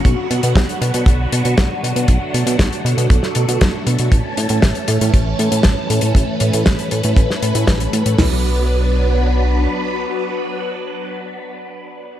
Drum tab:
HH |x-xxxxxxx-xxx-xx|x-xxxxxxx-xxx-xx|x-xxxxxxx-xxx-xx|x-xxxxxxx-xxxxxx|
SD |----o-------o---|----o----o--o---|----o-------o---|----o----o--o---|
FT |----------------|----------------|----------------|----------------|
BD |o---o---o---o---|o---o---o---o---|o---o---o---o---|o---o---o---o---|

HH |o---------------|----------------|
SD |o---------------|----------------|
FT |o---------------|----------------|
BD |----------------|----------------|